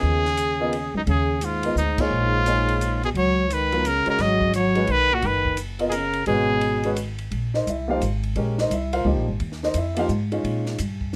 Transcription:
Already playing: trombone C#3, upright piano B3 F4 A#4 D#5, trumpet G#4
0.03 upright bass D#2
0.25 snare
0.37 hi-hat pedal, ride
0.60 upright piano B3 F4 A#4 D#5
0.73 ride
0.94 upright bass C#2, trombone F#2, trumpet D#4
1.07 upright bass D#2, trombone C#3, trumpet G#4, ride
1.41 trombone G#2, trumpet F4, hi-hat pedal, ride
1.63 upright piano B3 F4 A#4 D#5, ride
1.76 upright bass D2, trombone G#2, trumpet D#4, hi-hat pedal
1.98 trombone G#2, upright piano A#3 D#4 G#4 C#5, trumpet F4, kick, crash
2.11 upright bass A#1
2.46 upright piano A#3 D#4 G#4 C#5, hi-hat pedal, ride
2.69 ride
2.81 hi-hat pedal, ride
3.03 trombone B2, trumpet G#4, ride
3.14 upright bass C#2, trombone F#3, trumpet C#5, ride
3.50 trombone D#3, trumpet B4, hi-hat pedal, ride
3.72 upright piano F#3 B3 F4 A#4, ride
3.85 trombone C#3, trumpet A#4, hi-hat pedal, ride
4.06 trombone C#3, upright piano G#3 C#4 F#4 C#5, muted upright bass stroke, ride
4.10 trumpet A#4
4.19 upright bass G#1, trombone F#3, trumpet D#5, snare, ride
4.41 kick
4.53 trombone F#3, trumpet C#5, hi-hat pedal, ride
4.75 upright piano G#3 C#4 F#4 B4, ride
4.87 upright bass B1, trombone D#3, ride
4.91 trumpet B4
5.13 trombone A#2, trumpet F#4
5.22 upright bass F#1, trombone D#3, ride
5.26 trumpet B4
5.45 kick
5.57 hi-hat pedal, ride
5.79 upright piano B3 F4 A#4 D#5, ride
5.87 trombone B2, trumpet G#4
5.91 trombone C#3, trumpet A#4, hi-hat pedal, ride
6.13 ride
6.26 upright bass G#1, trombone B2, upright piano G#3 C#4 F#4 B4, trumpet G#4, ride
6.61 ride
6.83 upright piano G#3 C#4 F#4 B4, ride
6.96 hi-hat pedal, ride
7.18 ride
7.31 upright bass A#1, ride
7.54 upright piano D#4 A#4 C5 D#5, snare
7.67 upright bass C2, upright piano E4 E5, hi-hat pedal, ride
7.88 upright piano F3 A#3 D#4 F4 G4 A#4 C5 F5
8.01 upright bass G#1, hi-hat pedal, ride
8.23 ride
8.36 upright bass A#1, upright piano G#3 C#4 G4 A#4, ride
8.58 upright piano D#4 A#4 C5 D#5, snare
8.70 upright bass C2, upright piano E4 E5, hi-hat pedal, ride
8.93 upright piano F4 A#4 C5 F5, ride
9.05 upright bass C#2, upright piano F3 A#3 D#4 G4
9.17 upright bass A#1
9.28 upright bass G#1
9.40 upright bass D#2, ride
9.52 snare
9.63 upright piano D#4 A#4 C5 D#5, snare
9.74 upright bass F2, upright piano E5, hi-hat pedal, ride
9.78 upright piano E4
9.95 upright piano F3 A#3 D#4 G4 E5, ride
9.99 upright piano F4 A#4 C5 F5
10.09 upright bass G#2, hi-hat pedal
10.32 upright piano D#3 G#3 C#4 F4, ride
10.44 upright bass A#2, ride
10.66 snare
10.79 upright bass G2, hi-hat pedal, ride
11.01 kick

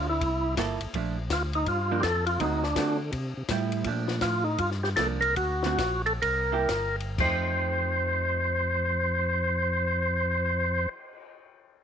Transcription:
Already playing: tonewheel organ D2, hollow-body jazz guitar A3 D4
0.10 tonewheel organ E4
0.20 tonewheel organ C2, kick, ride
0.57 tonewheel organ G1, hollow-body jazz guitar A#3 E4 A4, kick, snare, hi-hat pedal, ride
0.80 tonewheel organ G1, ride
0.93 tonewheel organ A#1, hollow-body jazz guitar F3 A3 D4, kick, ride
1.29 tonewheel organ D2 F4, kick, snare, hi-hat pedal, ride
1.53 tonewheel organ D#4, ride
1.66 tonewheel organ G2 F4, kick, ride
1.91 hollow-body jazz guitar F3 A#3 D4
2.00 tonewheel organ F2 G4 A4, kick, snare, hi-hat pedal, ride
2.27 tonewheel organ F4, ride
2.40 tonewheel organ D2 D#4, hollow-body jazz guitar D3 A3 C4 F#4, kick, ride
2.63 tonewheel organ D4, snare
2.75 tonewheel organ D3, hollow-body jazz guitar D3 A3 C4 F#4, kick, snare, hi-hat pedal, ride
3.12 tonewheel organ C3, kick, ride
3.37 tonewheel organ C3
3.48 tonewheel organ A2, hollow-body jazz guitar G3 E4, kick, snare, hi-hat pedal, ride
3.72 ride
3.84 tonewheel organ A#2, hollow-body jazz guitar F3 A3 D4, kick, ride
4.08 snare
4.21 tonewheel organ A2 F4, kick, snare, hi-hat pedal, ride
4.44 tonewheel organ D#4
4.58 tonewheel organ G2 F4, kick, ride
4.71 snare
4.83 tonewheel organ G4, snare
4.96 tonewheel organ C2 A4, hollow-body jazz guitar F3 A#3, kick, snare, hi-hat pedal, ride
5.00 hollow-body jazz guitar D4
5.21 tonewheel organ A#4, ride
5.36 tonewheel organ D2 F#4, kick, ride
5.63 hollow-body jazz guitar D3 A3 C4 F#4, snare
5.78 tonewheel organ A#1, kick, snare, hi-hat pedal, ride
6.06 tonewheel organ A4, ride
6.22 tonewheel organ C2 A#4, kick, ride
6.52 hollow-body jazz guitar A#3 E4 G4
6.69 tonewheel organ G1, kick, snare, hi-hat pedal, ride
7.00 ride
7.18 tonewheel organ F2 C5, hollow-body jazz guitar F3 A3 D#4 G4, kick, crash
7.52 cymbal swell

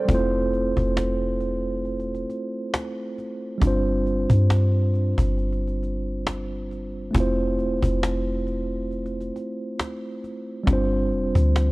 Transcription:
Already playing: tine electric piano A4 C5 D5
0.05 808-style bass F1, tine electric piano G3 C4, cajon bass
0.10 tine electric piano A3 E4 F4
0.15 tine electric piano C5
0.53 cajon slap
0.77 808-style bass F1, cajon bass
0.97 cajon slap
1.41 cajon slap
1.85 cajon slap
2.00 cajon slap
2.14 cajon slap
2.29 cajon slap
2.74 cajon slap
3.18 cajon slap
3.58 808-style bass G1, tine electric piano G3 C4, cajon bass
3.63 tine electric piano D4 F4
3.67 tine electric piano C5
4.06 cajon slap
4.30 808-style bass G2, cajon bass
4.50 cajon slap
4.94 cajon slap
5.18 808-style bass G1, cajon bass
5.38 cajon slap
5.52 cajon slap
5.67 cajon slap
5.83 cajon slap
6.27 cajon slap
6.71 cajon slap
7.11 808-style bass F1, tine electric piano A3 C4, cajon bass
7.16 tine electric piano E4 F4
7.20 tine electric piano C5
7.59 808-style bass E1, cajon slap
7.83 808-style bass F1, cajon bass
8.03 cajon slap
8.47 cajon slap
8.91 cajon slap
9.06 cajon slap
9.20 cajon slap
9.36 cajon slap
9.79 cajon slap
10.24 cajon slap
10.64 808-style bass G1, tine electric piano G3 C4, cajon bass
10.68 tine electric piano D4 F4
10.73 tine electric piano C5
11.12 808-style bass F1, cajon slap
11.36 808-style bass D2, cajon bass
11.56 cajon slap

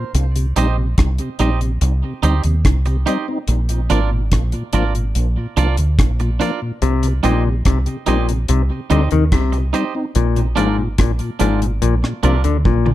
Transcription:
Already playing: clean electric guitar C5
0.15 fingered electric bass C2, closed hi-hat
0.36 tonewheel organ C3, closed hi-hat
0.56 fingered electric bass A#1, tonewheel organ G3 C4 D#4, clean electric guitar D#4 G4 C5 D#5, closed hi-hat
0.78 tonewheel organ C3
0.98 fingered electric bass C2, kick, cross-stick, closed hi-hat
1.18 tonewheel organ C3, closed hi-hat
1.39 fingered electric bass A#1, tonewheel organ G3 C4 D#4, clean electric guitar D#4 G4 C5 D#5, closed hi-hat
1.61 tonewheel organ C3, closed hi-hat
1.81 fingered electric bass C2, closed hi-hat
2.03 tonewheel organ C3
2.23 fingered electric bass D2, tonewheel organ G3 C4 D#4, clean electric guitar D#4 G4 C5 D#5, closed hi-hat
2.44 fingered electric bass D#2, tonewheel organ C3, muted clean electric guitar stroke, closed hi-hat
2.65 fingered electric bass C2, kick, cross-stick, closed hi-hat
2.85 tonewheel organ C3, muted clean electric guitar stroke, closed hi-hat
3.06 tonewheel organ G3 C4 D#4, clean electric guitar D#4 G4 C5 D#5, closed hi-hat
3.28 tonewheel organ C4 D#4
3.48 fingered electric bass A#1, closed hi-hat
3.69 tonewheel organ A#2, closed hi-hat
3.90 fingered electric bass G#1, tonewheel organ F3 A#3 D4, clean electric guitar D4 F4 A#4 D5, closed hi-hat
4.11 tonewheel organ A#2
4.32 fingered electric bass A#1, kick, cross-stick, closed hi-hat
4.52 tonewheel organ A#2, closed hi-hat
4.73 fingered electric bass G#1, tonewheel organ F3 A#3 D4, clean electric guitar D4 F4 A#4 D5, closed hi-hat
4.95 tonewheel organ A#2, closed hi-hat
5.15 fingered electric bass A#1, closed hi-hat
5.37 tonewheel organ A#2
5.57 fingered electric bass C2, tonewheel organ F3 A#3 D4, clean electric guitar D4 F4 A#4 D5, closed hi-hat
5.77 fingered electric bass D2, muted clean electric guitar stroke, closed hi-hat
5.99 fingered electric bass A#1, kick, cross-stick, closed hi-hat
6.20 tonewheel organ A#2, muted clean electric guitar stroke, closed hi-hat
6.40 tonewheel organ F3 A#3 D4, clean electric guitar D4 F4 A#4 D5, closed hi-hat
6.62 tonewheel organ A#2
6.82 fingered electric bass C2, clav C3, closed hi-hat
7.03 tonewheel organ C3, closed hi-hat
7.23 fingered electric bass A#1, clav A#2, tonewheel organ G3 C4 D#4, clean electric guitar D#4 G4 C5 D#5, closed hi-hat
7.45 tonewheel organ C3
7.65 fingered electric bass C2, clav C3, kick, cross-stick, closed hi-hat
7.86 tonewheel organ C3, closed hi-hat
8.06 fingered electric bass A#1, clav A#2, tonewheel organ G3 C4 D#4, clean electric guitar D#4 G4 C5 D#5, closed hi-hat
8.29 tonewheel organ C3, closed hi-hat
8.48 fingered electric bass C2, clav C3, closed hi-hat
8.70 tonewheel organ C3
8.90 fingered electric bass D2, clav D3, tonewheel organ G3 C4 D#4, clean electric guitar D#4 G4 C5 D#5, closed hi-hat
9.11 fingered electric bass D#2, tonewheel organ C3, clav D#3, closed hi-hat
9.32 fingered electric bass C2, clav C3, kick, cross-stick, closed hi-hat
9.52 tonewheel organ C3, muted clean electric guitar stroke, closed hi-hat
9.73 tonewheel organ G3 C4 D#4, clean electric guitar D#4 G4 C5 D#5, closed hi-hat
9.95 tonewheel organ C4 D#4
10.15 fingered electric bass A#1, clav A#2, closed hi-hat
10.36 tonewheel organ A#2, closed hi-hat
10.56 fingered electric bass G#1, clav G#2, tonewheel organ F3 A#3 D4, clean electric guitar D4 F4 A#4 D5, closed hi-hat
10.78 tonewheel organ A#2
10.98 fingered electric bass A#1, clav A#2, kick, cross-stick, closed hi-hat
11.19 tonewheel organ A#2, closed hi-hat
11.39 fingered electric bass G#1, clav G#2, tonewheel organ F3 A#3 D4, clean electric guitar D4 F4 A#4 D5, closed hi-hat
11.62 tonewheel organ A#2, closed hi-hat
11.82 fingered electric bass A#1, clav A#2, closed hi-hat
12.03 tonewheel organ A#2, cross-stick
12.23 fingered electric bass C2, clav C3, tonewheel organ F3 A#3 D4, clean electric guitar D4 F4 A#4 D5, closed hi-hat
12.44 fingered electric bass D2, clav D3, muted clean electric guitar stroke, closed hi-hat
12.65 fingered electric bass A#1, clav A#2, kick, high tom
12.86 tonewheel organ A#2, muted clean electric guitar stroke, mid tom

